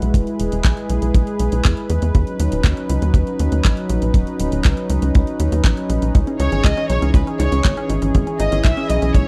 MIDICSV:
0, 0, Header, 1, 6, 480
1, 0, Start_track
1, 0, Key_signature, 5, "major"
1, 0, Tempo, 500000
1, 141, Time_signature, 4, 2, 24, 8
1, 8908, End_track
2, 0, Start_track
2, 0, Title_t, "Violin section"
2, 0, Program_c, 0, 48
2, 6146, Note_on_c, 0, 73, 93
2, 6367, Note_off_c, 0, 73, 0
2, 6385, Note_on_c, 0, 75, 104
2, 6623, Note_off_c, 0, 75, 0
2, 6624, Note_on_c, 0, 73, 92
2, 6846, Note_off_c, 0, 73, 0
2, 6862, Note_on_c, 0, 71, 87
2, 6970, Note_off_c, 0, 71, 0
2, 7103, Note_on_c, 0, 73, 88
2, 7549, Note_off_c, 0, 73, 0
2, 8061, Note_on_c, 0, 75, 98
2, 8284, Note_off_c, 0, 75, 0
2, 8299, Note_on_c, 0, 76, 107
2, 8539, Note_on_c, 0, 75, 96
2, 8540, Note_off_c, 0, 76, 0
2, 8778, Note_on_c, 0, 73, 95
2, 8780, Note_off_c, 0, 75, 0
2, 8908, Note_off_c, 0, 73, 0
2, 8908, End_track
3, 0, Start_track
3, 0, Title_t, "Analog synth pad"
3, 0, Program_c, 1, 89
3, 0, Note_on_c, 1, 56, 80
3, 0, Note_on_c, 1, 64, 75
3, 0, Note_on_c, 1, 66, 75
3, 0, Note_on_c, 1, 71, 90
3, 124, Note_off_c, 1, 66, 0
3, 142, Note_on_c, 1, 68, 74
3, 2024, Note_off_c, 1, 56, 0
3, 2025, Note_off_c, 1, 64, 0
3, 2042, Note_off_c, 1, 68, 0
3, 2062, Note_on_c, 1, 54, 79
3, 2062, Note_on_c, 1, 61, 75
3, 2062, Note_on_c, 1, 63, 75
3, 5863, Note_off_c, 1, 54, 0
3, 5865, Note_off_c, 1, 71, 0
3, 5903, Note_on_c, 1, 52, 81
3, 5903, Note_on_c, 1, 68, 91
3, 7783, Note_off_c, 1, 63, 0
3, 7818, Note_on_c, 1, 64, 75
3, 8908, Note_off_c, 1, 52, 0
3, 8908, Note_off_c, 1, 61, 0
3, 8908, Note_off_c, 1, 64, 0
3, 8908, Note_off_c, 1, 68, 0
3, 8908, End_track
4, 0, Start_track
4, 0, Title_t, "Synth arpeggio sound"
4, 0, Program_c, 2, 84
4, 5901, Note_on_c, 2, 56, 78
4, 5999, Note_off_c, 2, 56, 0
4, 6021, Note_on_c, 2, 61, 75
4, 6080, Note_off_c, 2, 61, 0
4, 6142, Note_on_c, 2, 63, 79
4, 6255, Note_off_c, 2, 63, 0
4, 6263, Note_on_c, 2, 61, 77
4, 6360, Note_off_c, 2, 61, 0
4, 6381, Note_on_c, 2, 56, 81
4, 6479, Note_off_c, 2, 56, 0
4, 6501, Note_on_c, 2, 61, 97
4, 6599, Note_off_c, 2, 61, 0
4, 6621, Note_on_c, 2, 63, 76
4, 6735, Note_off_c, 2, 63, 0
4, 6741, Note_on_c, 2, 61, 74
4, 6855, Note_off_c, 2, 61, 0
4, 6861, Note_on_c, 2, 56, 79
4, 6959, Note_off_c, 2, 56, 0
4, 6982, Note_on_c, 2, 61, 77
4, 7040, Note_off_c, 2, 61, 0
4, 7100, Note_on_c, 2, 63, 75
4, 7215, Note_off_c, 2, 63, 0
4, 7222, Note_on_c, 2, 61, 73
4, 7319, Note_off_c, 2, 61, 0
4, 7342, Note_on_c, 2, 56, 80
4, 7440, Note_off_c, 2, 56, 0
4, 7462, Note_on_c, 2, 61, 100
4, 7560, Note_off_c, 2, 61, 0
4, 7581, Note_on_c, 2, 63, 75
4, 7695, Note_off_c, 2, 63, 0
4, 7702, Note_on_c, 2, 61, 80
4, 7816, Note_off_c, 2, 61, 0
4, 7822, Note_on_c, 2, 56, 79
4, 7919, Note_off_c, 2, 56, 0
4, 7941, Note_on_c, 2, 61, 75
4, 8000, Note_off_c, 2, 61, 0
4, 8060, Note_on_c, 2, 63, 79
4, 8175, Note_off_c, 2, 63, 0
4, 8181, Note_on_c, 2, 61, 76
4, 8279, Note_off_c, 2, 61, 0
4, 8302, Note_on_c, 2, 56, 81
4, 8400, Note_off_c, 2, 56, 0
4, 8421, Note_on_c, 2, 61, 98
4, 8519, Note_off_c, 2, 61, 0
4, 8542, Note_on_c, 2, 63, 79
4, 8655, Note_off_c, 2, 63, 0
4, 8661, Note_on_c, 2, 61, 71
4, 8775, Note_off_c, 2, 61, 0
4, 8781, Note_on_c, 2, 56, 79
4, 8879, Note_off_c, 2, 56, 0
4, 8908, End_track
5, 0, Start_track
5, 0, Title_t, "Analog synth bass"
5, 0, Program_c, 3, 38
5, 20, Note_on_c, 3, 35, 80
5, 111, Note_off_c, 3, 35, 0
5, 135, Note_on_c, 3, 28, 100
5, 229, Note_off_c, 3, 28, 0
5, 380, Note_on_c, 3, 28, 88
5, 472, Note_off_c, 3, 28, 0
5, 500, Note_on_c, 3, 28, 82
5, 592, Note_off_c, 3, 28, 0
5, 619, Note_on_c, 3, 35, 101
5, 711, Note_off_c, 3, 35, 0
5, 859, Note_on_c, 3, 35, 93
5, 951, Note_off_c, 3, 35, 0
5, 979, Note_on_c, 3, 35, 79
5, 1071, Note_off_c, 3, 35, 0
5, 1099, Note_on_c, 3, 35, 95
5, 1191, Note_off_c, 3, 35, 0
5, 1339, Note_on_c, 3, 35, 91
5, 1431, Note_off_c, 3, 35, 0
5, 1461, Note_on_c, 3, 35, 78
5, 1552, Note_off_c, 3, 35, 0
5, 1586, Note_on_c, 3, 40, 96
5, 1674, Note_off_c, 3, 40, 0
5, 1821, Note_on_c, 3, 40, 94
5, 1912, Note_off_c, 3, 40, 0
5, 1941, Note_on_c, 3, 40, 82
5, 2032, Note_off_c, 3, 40, 0
5, 2062, Note_on_c, 3, 39, 100
5, 2152, Note_off_c, 3, 39, 0
5, 2300, Note_on_c, 3, 39, 87
5, 2391, Note_off_c, 3, 39, 0
5, 2420, Note_on_c, 3, 27, 78
5, 2511, Note_off_c, 3, 27, 0
5, 2534, Note_on_c, 3, 39, 101
5, 2628, Note_off_c, 3, 39, 0
5, 2779, Note_on_c, 3, 37, 94
5, 2871, Note_off_c, 3, 37, 0
5, 2899, Note_on_c, 3, 39, 82
5, 2991, Note_off_c, 3, 39, 0
5, 3013, Note_on_c, 3, 39, 97
5, 3108, Note_off_c, 3, 39, 0
5, 3260, Note_on_c, 3, 39, 91
5, 3352, Note_off_c, 3, 39, 0
5, 3380, Note_on_c, 3, 39, 81
5, 3471, Note_off_c, 3, 39, 0
5, 3502, Note_on_c, 3, 34, 100
5, 3593, Note_off_c, 3, 34, 0
5, 3739, Note_on_c, 3, 34, 94
5, 3831, Note_off_c, 3, 34, 0
5, 3860, Note_on_c, 3, 34, 83
5, 3951, Note_off_c, 3, 34, 0
5, 3975, Note_on_c, 3, 27, 101
5, 4069, Note_off_c, 3, 27, 0
5, 4219, Note_on_c, 3, 27, 91
5, 4311, Note_off_c, 3, 27, 0
5, 4339, Note_on_c, 3, 27, 82
5, 4431, Note_off_c, 3, 27, 0
5, 4464, Note_on_c, 3, 37, 102
5, 4553, Note_off_c, 3, 37, 0
5, 4700, Note_on_c, 3, 37, 92
5, 4791, Note_off_c, 3, 37, 0
5, 4820, Note_on_c, 3, 37, 79
5, 4911, Note_off_c, 3, 37, 0
5, 4946, Note_on_c, 3, 37, 100
5, 5034, Note_off_c, 3, 37, 0
5, 5180, Note_on_c, 3, 39, 92
5, 5271, Note_off_c, 3, 39, 0
5, 5300, Note_on_c, 3, 39, 80
5, 5391, Note_off_c, 3, 39, 0
5, 5416, Note_on_c, 3, 34, 98
5, 5509, Note_off_c, 3, 34, 0
5, 5659, Note_on_c, 3, 34, 94
5, 5751, Note_off_c, 3, 34, 0
5, 5779, Note_on_c, 3, 34, 79
5, 5871, Note_off_c, 3, 34, 0
5, 5904, Note_on_c, 3, 37, 102
5, 5993, Note_off_c, 3, 37, 0
5, 6139, Note_on_c, 3, 37, 92
5, 6231, Note_off_c, 3, 37, 0
5, 6258, Note_on_c, 3, 32, 82
5, 6350, Note_off_c, 3, 32, 0
5, 6378, Note_on_c, 3, 37, 105
5, 6470, Note_off_c, 3, 37, 0
5, 6619, Note_on_c, 3, 35, 93
5, 6711, Note_off_c, 3, 35, 0
5, 6739, Note_on_c, 3, 37, 78
5, 6831, Note_off_c, 3, 37, 0
5, 6854, Note_on_c, 3, 37, 100
5, 6948, Note_off_c, 3, 37, 0
5, 7098, Note_on_c, 3, 37, 93
5, 7190, Note_off_c, 3, 37, 0
5, 7218, Note_on_c, 3, 37, 81
5, 7310, Note_off_c, 3, 37, 0
5, 7341, Note_on_c, 3, 32, 99
5, 7432, Note_off_c, 3, 32, 0
5, 7578, Note_on_c, 3, 32, 91
5, 7670, Note_off_c, 3, 32, 0
5, 7698, Note_on_c, 3, 32, 81
5, 7790, Note_off_c, 3, 32, 0
5, 7822, Note_on_c, 3, 32, 100
5, 7913, Note_off_c, 3, 32, 0
5, 8059, Note_on_c, 3, 32, 93
5, 8151, Note_off_c, 3, 32, 0
5, 8179, Note_on_c, 3, 32, 81
5, 8271, Note_off_c, 3, 32, 0
5, 8300, Note_on_c, 3, 35, 101
5, 8391, Note_off_c, 3, 35, 0
5, 8540, Note_on_c, 3, 35, 94
5, 8631, Note_off_c, 3, 35, 0
5, 8659, Note_on_c, 3, 35, 78
5, 8751, Note_off_c, 3, 35, 0
5, 8778, Note_on_c, 3, 35, 97
5, 8870, Note_off_c, 3, 35, 0
5, 8908, End_track
6, 0, Start_track
6, 0, Title_t, "Drums"
6, 20, Note_on_c, 9, 42, 50
6, 116, Note_off_c, 9, 42, 0
6, 135, Note_on_c, 9, 36, 113
6, 140, Note_on_c, 9, 42, 53
6, 231, Note_off_c, 9, 36, 0
6, 236, Note_off_c, 9, 42, 0
6, 260, Note_on_c, 9, 42, 26
6, 356, Note_off_c, 9, 42, 0
6, 380, Note_on_c, 9, 42, 94
6, 476, Note_off_c, 9, 42, 0
6, 500, Note_on_c, 9, 42, 53
6, 596, Note_off_c, 9, 42, 0
6, 620, Note_on_c, 9, 36, 123
6, 620, Note_on_c, 9, 39, 115
6, 620, Note_on_c, 9, 42, 51
6, 716, Note_off_c, 9, 36, 0
6, 716, Note_off_c, 9, 39, 0
6, 716, Note_off_c, 9, 42, 0
6, 740, Note_on_c, 9, 42, 26
6, 836, Note_off_c, 9, 42, 0
6, 860, Note_on_c, 9, 42, 91
6, 956, Note_off_c, 9, 42, 0
6, 980, Note_on_c, 9, 42, 54
6, 1076, Note_off_c, 9, 42, 0
6, 1099, Note_on_c, 9, 36, 114
6, 1099, Note_on_c, 9, 42, 52
6, 1195, Note_off_c, 9, 36, 0
6, 1195, Note_off_c, 9, 42, 0
6, 1220, Note_on_c, 9, 42, 27
6, 1316, Note_off_c, 9, 42, 0
6, 1339, Note_on_c, 9, 42, 92
6, 1435, Note_off_c, 9, 42, 0
6, 1460, Note_on_c, 9, 42, 53
6, 1556, Note_off_c, 9, 42, 0
6, 1581, Note_on_c, 9, 39, 119
6, 1581, Note_on_c, 9, 42, 51
6, 1586, Note_on_c, 9, 36, 116
6, 1677, Note_off_c, 9, 39, 0
6, 1677, Note_off_c, 9, 42, 0
6, 1682, Note_off_c, 9, 36, 0
6, 1700, Note_on_c, 9, 42, 27
6, 1796, Note_off_c, 9, 42, 0
6, 1821, Note_on_c, 9, 42, 91
6, 1917, Note_off_c, 9, 42, 0
6, 1940, Note_on_c, 9, 42, 53
6, 2036, Note_off_c, 9, 42, 0
6, 2061, Note_on_c, 9, 42, 50
6, 2062, Note_on_c, 9, 36, 114
6, 2157, Note_off_c, 9, 42, 0
6, 2158, Note_off_c, 9, 36, 0
6, 2180, Note_on_c, 9, 42, 25
6, 2276, Note_off_c, 9, 42, 0
6, 2300, Note_on_c, 9, 42, 94
6, 2396, Note_off_c, 9, 42, 0
6, 2419, Note_on_c, 9, 42, 52
6, 2515, Note_off_c, 9, 42, 0
6, 2534, Note_on_c, 9, 36, 106
6, 2540, Note_on_c, 9, 39, 119
6, 2540, Note_on_c, 9, 42, 49
6, 2630, Note_off_c, 9, 36, 0
6, 2636, Note_off_c, 9, 39, 0
6, 2636, Note_off_c, 9, 42, 0
6, 2660, Note_on_c, 9, 42, 24
6, 2756, Note_off_c, 9, 42, 0
6, 2779, Note_on_c, 9, 42, 90
6, 2875, Note_off_c, 9, 42, 0
6, 2900, Note_on_c, 9, 42, 52
6, 2996, Note_off_c, 9, 42, 0
6, 3013, Note_on_c, 9, 36, 123
6, 3020, Note_on_c, 9, 42, 52
6, 3109, Note_off_c, 9, 36, 0
6, 3116, Note_off_c, 9, 42, 0
6, 3140, Note_on_c, 9, 42, 27
6, 3236, Note_off_c, 9, 42, 0
6, 3259, Note_on_c, 9, 42, 89
6, 3355, Note_off_c, 9, 42, 0
6, 3379, Note_on_c, 9, 42, 53
6, 3475, Note_off_c, 9, 42, 0
6, 3501, Note_on_c, 9, 39, 116
6, 3501, Note_on_c, 9, 42, 50
6, 3503, Note_on_c, 9, 36, 109
6, 3597, Note_off_c, 9, 39, 0
6, 3597, Note_off_c, 9, 42, 0
6, 3599, Note_off_c, 9, 36, 0
6, 3620, Note_on_c, 9, 42, 26
6, 3716, Note_off_c, 9, 42, 0
6, 3740, Note_on_c, 9, 42, 87
6, 3836, Note_off_c, 9, 42, 0
6, 3859, Note_on_c, 9, 42, 50
6, 3955, Note_off_c, 9, 42, 0
6, 3975, Note_on_c, 9, 36, 124
6, 3979, Note_on_c, 9, 42, 49
6, 4071, Note_off_c, 9, 36, 0
6, 4075, Note_off_c, 9, 42, 0
6, 4100, Note_on_c, 9, 42, 25
6, 4196, Note_off_c, 9, 42, 0
6, 4220, Note_on_c, 9, 42, 90
6, 4316, Note_off_c, 9, 42, 0
6, 4340, Note_on_c, 9, 42, 52
6, 4436, Note_off_c, 9, 42, 0
6, 4459, Note_on_c, 9, 39, 114
6, 4459, Note_on_c, 9, 42, 48
6, 4464, Note_on_c, 9, 36, 114
6, 4555, Note_off_c, 9, 39, 0
6, 4555, Note_off_c, 9, 42, 0
6, 4560, Note_off_c, 9, 36, 0
6, 4580, Note_on_c, 9, 42, 24
6, 4676, Note_off_c, 9, 42, 0
6, 4700, Note_on_c, 9, 42, 85
6, 4796, Note_off_c, 9, 42, 0
6, 4821, Note_on_c, 9, 42, 50
6, 4917, Note_off_c, 9, 42, 0
6, 4941, Note_on_c, 9, 42, 50
6, 4946, Note_on_c, 9, 36, 125
6, 5037, Note_off_c, 9, 42, 0
6, 5042, Note_off_c, 9, 36, 0
6, 5061, Note_on_c, 9, 42, 25
6, 5157, Note_off_c, 9, 42, 0
6, 5180, Note_on_c, 9, 42, 91
6, 5276, Note_off_c, 9, 42, 0
6, 5301, Note_on_c, 9, 42, 50
6, 5397, Note_off_c, 9, 42, 0
6, 5416, Note_on_c, 9, 36, 123
6, 5421, Note_on_c, 9, 39, 115
6, 5421, Note_on_c, 9, 42, 50
6, 5512, Note_off_c, 9, 36, 0
6, 5517, Note_off_c, 9, 39, 0
6, 5517, Note_off_c, 9, 42, 0
6, 5541, Note_on_c, 9, 42, 25
6, 5637, Note_off_c, 9, 42, 0
6, 5661, Note_on_c, 9, 42, 84
6, 5757, Note_off_c, 9, 42, 0
6, 5781, Note_on_c, 9, 42, 49
6, 5877, Note_off_c, 9, 42, 0
6, 5902, Note_on_c, 9, 42, 49
6, 5904, Note_on_c, 9, 36, 115
6, 5998, Note_off_c, 9, 42, 0
6, 6000, Note_off_c, 9, 36, 0
6, 6021, Note_on_c, 9, 42, 24
6, 6117, Note_off_c, 9, 42, 0
6, 6141, Note_on_c, 9, 42, 83
6, 6237, Note_off_c, 9, 42, 0
6, 6261, Note_on_c, 9, 42, 47
6, 6357, Note_off_c, 9, 42, 0
6, 6378, Note_on_c, 9, 36, 116
6, 6381, Note_on_c, 9, 39, 115
6, 6381, Note_on_c, 9, 42, 47
6, 6474, Note_off_c, 9, 36, 0
6, 6477, Note_off_c, 9, 39, 0
6, 6477, Note_off_c, 9, 42, 0
6, 6501, Note_on_c, 9, 42, 23
6, 6597, Note_off_c, 9, 42, 0
6, 6621, Note_on_c, 9, 42, 83
6, 6717, Note_off_c, 9, 42, 0
6, 6742, Note_on_c, 9, 42, 50
6, 6838, Note_off_c, 9, 42, 0
6, 6853, Note_on_c, 9, 36, 120
6, 6861, Note_on_c, 9, 42, 46
6, 6949, Note_off_c, 9, 36, 0
6, 6957, Note_off_c, 9, 42, 0
6, 6981, Note_on_c, 9, 42, 25
6, 7077, Note_off_c, 9, 42, 0
6, 7101, Note_on_c, 9, 42, 87
6, 7197, Note_off_c, 9, 42, 0
6, 7221, Note_on_c, 9, 42, 50
6, 7317, Note_off_c, 9, 42, 0
6, 7340, Note_on_c, 9, 39, 114
6, 7340, Note_on_c, 9, 42, 47
6, 7342, Note_on_c, 9, 36, 122
6, 7436, Note_off_c, 9, 39, 0
6, 7436, Note_off_c, 9, 42, 0
6, 7438, Note_off_c, 9, 36, 0
6, 7461, Note_on_c, 9, 42, 24
6, 7557, Note_off_c, 9, 42, 0
6, 7580, Note_on_c, 9, 42, 83
6, 7676, Note_off_c, 9, 42, 0
6, 7699, Note_on_c, 9, 42, 48
6, 7795, Note_off_c, 9, 42, 0
6, 7820, Note_on_c, 9, 42, 47
6, 7822, Note_on_c, 9, 36, 106
6, 7916, Note_off_c, 9, 42, 0
6, 7918, Note_off_c, 9, 36, 0
6, 7940, Note_on_c, 9, 42, 23
6, 8036, Note_off_c, 9, 42, 0
6, 8060, Note_on_c, 9, 42, 86
6, 8156, Note_off_c, 9, 42, 0
6, 8180, Note_on_c, 9, 42, 48
6, 8276, Note_off_c, 9, 42, 0
6, 8300, Note_on_c, 9, 36, 117
6, 8301, Note_on_c, 9, 39, 105
6, 8301, Note_on_c, 9, 42, 47
6, 8396, Note_off_c, 9, 36, 0
6, 8397, Note_off_c, 9, 39, 0
6, 8397, Note_off_c, 9, 42, 0
6, 8421, Note_on_c, 9, 42, 23
6, 8517, Note_off_c, 9, 42, 0
6, 8540, Note_on_c, 9, 42, 83
6, 8636, Note_off_c, 9, 42, 0
6, 8660, Note_on_c, 9, 42, 48
6, 8756, Note_off_c, 9, 42, 0
6, 8779, Note_on_c, 9, 36, 108
6, 8781, Note_on_c, 9, 42, 46
6, 8875, Note_off_c, 9, 36, 0
6, 8877, Note_off_c, 9, 42, 0
6, 8908, End_track
0, 0, End_of_file